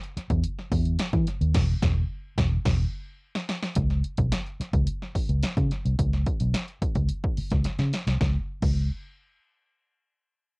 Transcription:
0.04 closed hi-hat
0.17 muted fingered electric bass stroke, snare, closed hi-hat
0.30 fingered electric bass E2, kick, closed hi-hat
0.44 closed hi-hat
0.58 snare
0.72 fingered electric bass E2, kick, open hi-hat
0.85 closed hi-hat
0.99 snare, closed hi-hat
1.13 fingered electric bass E3, kick, closed hi-hat
1.27 snare, closed hi-hat
1.41 fingered electric bass D#2, closed hi-hat
1.54 fingered electric bass E1, kick, snare, crash
1.82 fingered electric bass E1, kick, snare
2.38 fingered electric bass E1, kick, snare
2.65 fingered electric bass E1, kick, snare, crash
3.35 snare
3.49 snare
3.63 snare
3.75 fingered electric bass C#2, kick, closed hi-hat
3.90 snare, closed hi-hat
4.04 closed hi-hat
4.17 fingered electric bass B1, kick, closed hi-hat
4.32 snare, closed hi-hat
4.46 closed hi-hat
4.60 muted fingered electric bass stroke, snare, closed hi-hat
4.73 fingered electric bass C#2, kick, closed hi-hat
4.87 closed hi-hat
5.02 snare
5.15 muted fingered electric bass stroke, kick, open hi-hat
5.29 fingered electric bass C#2, closed hi-hat
5.43 snare, closed hi-hat
5.57 fingered electric bass C#3, kick, closed hi-hat
5.71 snare, closed hi-hat
5.85 fingered electric bass C2, closed hi-hat
5.99 fingered electric bass C#2, kick, closed hi-hat
6.13 snare, closed hi-hat
6.26 kick, closed hi-hat
6.40 fingered electric bass B1, closed hi-hat
6.54 snare, closed hi-hat
6.68 closed hi-hat
6.82 muted fingered electric bass stroke, kick, closed hi-hat
6.95 fingered electric bass C#2, kick, closed hi-hat
7.09 closed hi-hat
7.24 kick
7.37 muted fingered electric bass stroke, open hi-hat
7.50 fingered electric bass C#2, kick, snare, closed hi-hat
7.64 snare, closed hi-hat
7.79 fingered electric bass C#3, snare, closed hi-hat
7.93 snare, closed hi-hat
8.07 fingered electric bass C2, snare, closed hi-hat
8.21 fingered electric bass C#2, kick, snare
8.62 fingered electric bass C#2, kick, crash

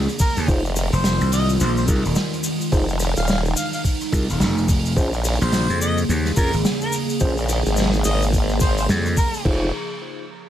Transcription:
Already playing: ambient pad C#3 A#3 G#4
0.09 cross-stick, open hi-hat, shaker
0.19 harmonica A#4, kick, open hi-hat, shaker
0.37 slap bass D#2, open hi-hat, shaker
0.48 wobble bass F1, ambient pad D#3 G#3 F4, tine electric piano D#4 F4 G#4 C5, kick, open hi-hat, shaker
0.64 open hi-hat, shaker
0.76 cross-stick, open hi-hat, shaker
0.93 slap bass F1, harmonica C5, open hi-hat, shaker
1.04 snare, open hi-hat, shaker
1.21 slap bass C2, open hi-hat, shaker
1.32 harmonica D#5, open hi-hat, shaker
1.49 open hi-hat, shaker
1.60 slap bass A#1, harmonica C5, open hi-hat, shaker
1.77 harmonica C5, snare, open hi-hat, shaker
1.85 slap bass C2, tine electric piano D#4 F4 G#4 A#4, kick, snare, open hi-hat, shaker
1.94 snare
2.05 slap bass D#1, open hi-hat, shaker
2.15 snare, open hi-hat, shaker
2.33 open hi-hat, shaker
2.43 open hi-hat, shaker
2.61 open hi-hat, shaker
2.72 wobble bass F1, tine electric piano D#4 F4 G#4 C5, ambient pad D#4, kick, open hi-hat, shaker
2.89 open hi-hat, shaker
2.99 cross-stick, open hi-hat, shaker
3.16 wobble bass D#1, harmonica F5, open hi-hat, shaker
3.19 open hi-hat
3.22 open hi-hat
3.24 open hi-hat
3.26 open hi-hat, shaker
3.29 harmonica F5, snare, open hi-hat
3.45 open hi-hat, shaker
3.56 harmonica F5, open hi-hat, shaker
3.73 harmonica F5, open hi-hat, shaker
3.84 kick, open hi-hat, shaker
4.01 cross-stick, open hi-hat, shaker
4.12 slap bass C2, tine electric piano D#4 F4 G#4 A#4, kick, open hi-hat, shaker
4.29 slap bass D#1, open hi-hat, shaker
4.40 slap bass F1, snare, open hi-hat, shaker
4.57 cross-stick, open hi-hat, shaker
4.68 kick, open hi-hat, shaker
4.85 open hi-hat, shaker
4.96 wobble bass A#1, ambient pad C#3 A#3 G#4, tine electric piano C#4 F4 G#4 C5, kick, open hi-hat, shaker
5.13 open hi-hat, shaker
5.24 cross-stick, open hi-hat, shaker
5.33 cross-stick
5.41 slap bass A#1, harmonica C5, cross-stick, open hi-hat, shaker
5.47 cross-stick
5.53 snare, open hi-hat, shaker
5.69 slap bass F2, shaker
5.81 harmonica D#5, shaker
5.97 open hi-hat, shaker
6.09 slap bass D#2, open hi-hat, shaker
6.25 snare, open hi-hat, shaker
6.37 slap bass F2, tine electric piano C#4 F4 G#4 A#4, harmonica A#4, kick, open hi-hat, shaker
6.53 slap bass G#1, open hi-hat, shaker
6.65 snare, open hi-hat, shaker
6.81 harmonica A#4, open hi-hat, shaker
6.92 open hi-hat, shaker
7.09 open hi-hat, shaker
7.20 wobble bass A#1, tine electric piano C#4 F4 G#4 C5, kick, open hi-hat, shaker
7.38 open hi-hat, shaker
7.49 cross-stick, open hi-hat, shaker
7.66 wobble bass G#1, snare, open hi-hat, shaker
7.68 snare, open hi-hat
7.73 snare, open hi-hat, shaker
7.77 snare, open hi-hat
7.81 snare, open hi-hat
7.85 snare, open hi-hat
7.90 snare, shaker
7.94 open hi-hat
8.04 wobble bass G#1, harmonica D#5, open hi-hat, shaker
8.22 open hi-hat, shaker
8.33 kick, open hi-hat, shaker
8.49 cross-stick, open hi-hat, shaker
8.60 harmonica C5, kick, open hi-hat, shaker
8.78 harmonica C5, open hi-hat, shaker
8.89 slap bass F2, snare, open hi-hat, shaker
9.06 cross-stick, open hi-hat, shaker
9.17 harmonica A#4, kick, open hi-hat, shaker
9.34 open hi-hat, shaker
9.36 open hi-hat
9.41 open hi-hat
9.45 wobble bass F1, tine electric piano D#4 F4 G#4 C5, kick, open hi-hat, crash
9.51 open hi-hat
9.54 open hi-hat

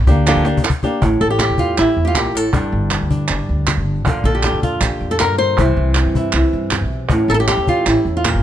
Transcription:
0.07 upright bass D2, nylon-string guitar A#3 D4 G4, cajon bass
0.26 nylon-string guitar D3 F3 A#3 D4 G4, clap
0.35 upright bass D2
0.45 nylon-string guitar A#3 D4 G4, cajon slap
0.57 cajon bass
0.64 muted nylon-string guitar stroke, clap
0.70 cajon bass
0.83 nylon-string guitar A#3 D4 G4, cajon bass
1.01 upright bass A1, nylon-string guitar A2, cajon bass
1.21 upright bass A1, nylon-string guitar A4
1.30 nylon-string guitar G4
1.39 nylon-string guitar G4, cajon slap, clap
1.49 upright bass E2
1.58 nylon-string guitar F4, cajon bass
1.78 upright bass A1, nylon-string guitar E4, clap
1.97 upright bass E2
2.05 nylon-string guitar F4 G4
2.15 nylon-string guitar A#2 G4, cajon slap, clap
2.25 upright bass A1
2.35 nylon-string guitar A2 A4
2.53 upright bass G1, nylon-string guitar G2 D4, cajon bass
2.72 upright bass G1
2.91 cajon slap, clap
3.01 upright bass D2
3.10 nylon-string guitar D4, cajon bass
3.28 upright bass G1, nylon-string guitar D4, clap
3.49 upright bass D2
3.67 cajon slap, clap
3.77 upright bass G1
4.05 upright bass A#1, nylon-string guitar A#2 D3 D4 F4, cajon bass
4.24 upright bass A#1, nylon-string guitar A4
4.35 nylon-string guitar G4
4.43 nylon-string guitar G4, cajon slap, clap
4.52 upright bass F2
4.63 nylon-string guitar F4, cajon bass
4.81 upright bass A#1, nylon-string guitar G4, clap
5.01 upright bass F2, cajon slap
5.11 nylon-string guitar A4
5.19 nylon-string guitar A#4, cajon slap, clap
5.29 upright bass G2
5.38 nylon-string guitar C5
5.58 upright bass C2, nylon-string guitar C3 E3 C4 E4, cajon bass
5.77 upright bass C2
5.95 cajon slap, clap
6.05 upright bass G2
6.15 nylon-string guitar E4, cajon bass
6.32 upright bass C2, nylon-string guitar E4, clap
6.53 upright bass G2, cajon slap
6.71 cajon slap, clap
6.82 upright bass B1
6.91 cajon slap
7.09 upright bass A1, nylon-string guitar A2 C#4, cajon bass
7.28 upright bass A1, nylon-string guitar A4 A#4
7.34 nylon-string guitar A4
7.40 nylon-string guitar G4
7.48 nylon-string guitar G4, cajon slap, clap
7.57 upright bass E2
7.67 nylon-string guitar F4, cajon bass
7.86 upright bass A1, nylon-string guitar E4, clap
8.05 upright bass E2, cajon slap
8.17 nylon-string guitar F4
8.25 nylon-string guitar A#2 G4, cajon slap, clap
8.34 upright bass A1

